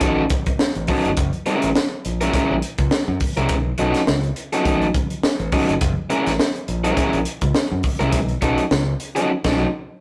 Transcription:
0.01 fingered electric bass A1, overdriven electric guitar F#3 C#4 D#4 A4, kick, closed hi-hat
0.30 kick, closed hi-hat
0.46 kick, closed hi-hat
0.59 muted fingered electric bass stroke, snare
0.75 fingered electric bass A1, closed hi-hat
0.87 overdriven electric guitar F#3 C#4 D#4 A4, kick, open hi-hat
1.05 fingered electric bass G1, closed hi-hat
1.17 fingered electric bass F#1, kick, closed hi-hat
1.33 closed hi-hat
1.46 overdriven electric guitar G#3 C#4 E4 A#4, closed hi-hat
1.62 fingered electric bass A1, closed hi-hat
1.75 snare
2.05 fingered electric bass A#1, closed hi-hat
2.21 overdriven electric guitar G#3 C#4 E4 A#4, closed hi-hat
2.33 overdriven electric guitar G#3 C#4 E4 A#4, kick, closed hi-hat
2.51 fingered electric bass A#1
2.62 closed hi-hat
2.78 fingered electric bass C#2, kick, closed hi-hat
2.91 snare
3.08 fingered electric bass F#2
3.20 kick, open hi-hat
3.37 fingered electric bass C2, overdriven electric guitar G#3 C#4 E4 A#4, closed hi-hat
3.49 fingered electric bass B1, kick, closed hi-hat
3.78 fingered electric bass B1, overdriven electric guitar F#3 C#4 D#4 A4, closed hi-hat
3.94 snare, closed hi-hat
4.07 fingered electric bass C#2, snare
4.24 closed hi-hat
4.36 closed hi-hat
4.53 overdriven electric guitar F#3 C#4 D#4 A4, closed hi-hat
4.65 fingered electric bass A1, overdriven electric guitar F#3 C#4 D#4 A4, kick, closed hi-hat
4.82 closed hi-hat
4.94 kick, closed hi-hat
5.10 closed hi-hat
5.23 muted fingered electric bass stroke, snare
5.39 fingered electric bass A1, closed hi-hat
5.52 overdriven electric guitar F#3 C#4 D#4 A4, kick, open hi-hat
5.69 fingered electric bass G1, closed hi-hat
5.81 fingered electric bass F#1, kick, closed hi-hat
6.10 overdriven electric guitar G#3 C#4 E4 A#4, closed hi-hat
6.26 fingered electric bass A1, snare, closed hi-hat
6.39 snare
6.55 closed hi-hat
6.68 fingered electric bass A#1, closed hi-hat
6.84 overdriven electric guitar G#3 C#4 E4 A#4, closed hi-hat
6.97 overdriven electric guitar G#3 C#4 E4 A#4, kick, closed hi-hat
7.13 fingered electric bass A#1, closed hi-hat
7.25 closed hi-hat
7.41 fingered electric bass C#2, kick, closed hi-hat
7.55 snare
7.71 fingered electric bass F#2
7.83 kick, open hi-hat
7.99 fingered electric bass C2, overdriven electric guitar G#3 C#4 E4 A#4, closed hi-hat
8.12 fingered electric bass B1, kick, closed hi-hat
8.29 closed hi-hat
8.41 fingered electric bass B1, overdriven electric guitar F#3 C#4 D#4 A4, kick, closed hi-hat
8.58 closed hi-hat
8.71 fingered electric bass C#2, snare
9.00 closed hi-hat
9.15 overdriven electric guitar F#3 C#4 D#4 A4, closed hi-hat
9.44 fingered electric bass B1, overdriven electric guitar F#3 C#4 D#4 A4, kick, snare, crash

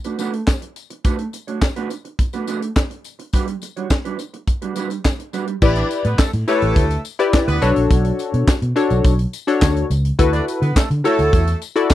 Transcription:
0.04 clean electric guitar A3 D4 F#4 B4, closed hi-hat, tambourine
0.19 clean electric guitar A3 D4 F#4 B4, closed hi-hat, tambourine
0.33 muted clean electric guitar stroke, closed hi-hat
0.47 muted clean electric guitar stroke, kick, snare, clap, tambourine
0.62 muted clean electric guitar stroke, closed hi-hat
0.76 closed hi-hat, tambourine
0.90 muted clean electric guitar stroke, closed hi-hat
1.04 clean electric guitar A3 D4 F#4 B4, kick, closed hi-hat, tambourine
1.19 muted clean electric guitar stroke, closed hi-hat
1.33 muted clean electric guitar stroke, closed hi-hat, tambourine
1.47 clean electric guitar A3 D4 F#4 C#5, closed hi-hat
1.62 muted clean electric guitar stroke, kick, snare, clap, tambourine
1.76 clean electric guitar A3 D4 F#4 B4, closed hi-hat
1.90 muted clean electric guitar stroke, closed hi-hat, tambourine
2.05 muted clean electric guitar stroke, closed hi-hat
2.19 muted clean electric guitar stroke, kick, closed hi-hat, tambourine
2.33 clean electric guitar A3 D4 F#4 B4, closed hi-hat, tambourine
2.47 clean electric guitar A3 D4 F#4 B4, closed hi-hat, tambourine
2.62 muted clean electric guitar stroke, closed hi-hat
2.76 kick, snare, clap, tambourine
2.90 muted clean electric guitar stroke, closed hi-hat
3.04 closed hi-hat, tambourine
3.19 muted clean electric guitar stroke, closed hi-hat
3.33 clean electric guitar G3 D4 F#4 B4, kick, closed hi-hat, tambourine
3.48 muted clean electric guitar stroke, closed hi-hat
3.62 muted clean electric guitar stroke, closed hi-hat, tambourine
3.76 clean electric guitar G3 D4 F#4 C#5, closed hi-hat
3.90 kick, snare, clap, tambourine
4.05 clean electric guitar G3 D4 F#4 B4, closed hi-hat
4.19 muted clean electric guitar stroke, closed hi-hat, tambourine
4.34 muted clean electric guitar stroke, closed hi-hat
4.47 muted clean electric guitar stroke, kick, closed hi-hat, tambourine
4.62 clean electric guitar G3 D4 F#4 B4, closed hi-hat
4.76 clean electric guitar G3 D4 F#4 B4, closed hi-hat, tambourine
4.90 muted clean electric guitar stroke, closed hi-hat, tambourine
5.04 muted clean electric guitar stroke, kick, snare, clap, tambourine
5.19 muted clean electric guitar stroke, closed hi-hat
5.33 clean electric guitar G3 D4 F#4 B4, closed hi-hat, tambourine
5.47 muted clean electric guitar stroke, closed hi-hat
5.62 fingered electric bass A1, analog polysynth E4 G4 B4 D5, kick, crash, tambourine
5.76 horn section D4 D5, closed hi-hat
5.91 closed hi-hat, tambourine
6.04 fingered electric bass A2, horn section B3 B4, closed hi-hat
6.19 horn section A3 A4, kick, snare, clap, tambourine
6.33 fingered electric bass A2, closed hi-hat
6.48 horn section A3 A4, analog polysynth E4 G4 B4 C#5, closed hi-hat, tambourine
6.62 fingered electric bass A1, closed hi-hat
6.76 fingered electric bass D2, kick, closed hi-hat, tambourine
6.90 closed hi-hat, tambourine
7.05 closed hi-hat, tambourine
7.19 analog polysynth E4 G4 B4 D5, closed hi-hat
7.34 kick, snare, clap, tambourine
7.48 fingered electric bass D2, horn section B3 B4, closed hi-hat
7.62 fingered electric bass B1, analog polysynth D4 F#4 A4 C#5, closed hi-hat, tambourine
7.76 fingered electric bass A#1, closed hi-hat
7.90 fingered electric bass B1, kick, closed hi-hat, tambourine
8.05 closed hi-hat
8.19 closed hi-hat, tambourine
8.34 fingered electric bass B2, closed hi-hat
8.48 kick, snare, clap, tambourine
8.62 fingered electric bass B2, closed hi-hat
8.76 analog polysynth D4 F#4 A4 C#5, closed hi-hat, tambourine
8.90 fingered electric bass B1, closed hi-hat, tambourine
9.04 fingered electric bass B1, kick, closed hi-hat, tambourine
9.19 closed hi-hat
9.33 closed hi-hat, tambourine
9.47 analog polysynth D4 F#4 A4 C#5, closed hi-hat
9.62 fingered electric bass D2, kick, snare, clap, tambourine
9.76 closed hi-hat
9.90 fingered electric bass C#2, closed hi-hat, tambourine
10.05 closed hi-hat
10.19 fingered electric bass D2, analog polysynth E4 F#4 A4 B4, kick, closed hi-hat, tambourine
10.33 horn section D4 D5, closed hi-hat
10.48 closed hi-hat, tambourine
10.62 fingered electric bass D3, horn section B3 B4, closed hi-hat
10.76 horn section A3 A4, kick, snare, clap, tambourine
10.90 fingered electric bass D3, closed hi-hat
11.04 horn section A3 A4, analog polysynth E4 F#4 A4 C#5, closed hi-hat, tambourine
11.19 fingered electric bass D2, closed hi-hat, tambourine
11.33 fingered electric bass E2, kick, closed hi-hat, tambourine
11.47 closed hi-hat, tambourine
11.62 closed hi-hat, tambourine
11.76 analog polysynth E4 F#4 A4 D5, closed hi-hat
11.90 kick, snare, clap, tambourine

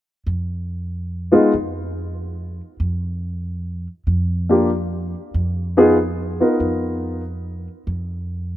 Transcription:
0.27 upright bass F2
1.32 grand piano G#3 B3 D#4 F4
1.53 upright bass F2
2.80 upright bass F2
4.07 upright bass F2
4.49 grand piano A#3 D4 F4 G4
5.34 upright bass F2
5.77 grand piano B3 D#4 F4 G#4
6.41 grand piano B3 D#4 F4 A#4
6.60 upright bass F2
7.87 upright bass F2

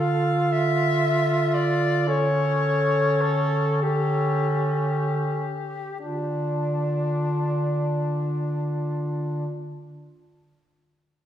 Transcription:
Already playing: bass clarinet D3, tenor saxophone F4, clarinet A4
0.00 soprano saxophone F5
0.52 soprano saxophone E5
1.54 soprano saxophone D5
2.08 tenor saxophone C#4, clarinet A4, soprano saxophone C#5
3.21 soprano saxophone A4
3.82 tenor saxophone C#4, soprano saxophone G4, clarinet A4
5.99 bass clarinet D3, tenor saxophone D4, soprano saxophone D4, clarinet F4

